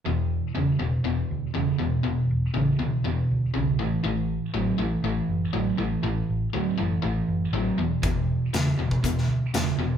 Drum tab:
HH |----------------|----------------|----------------|----------------|
SD |----------------|----------------|----------------|----------------|
BD |----------------|----------------|----------------|----------------|

HH |x---x---x---x---|
SD |----o----o--o---|
BD |o------oo-------|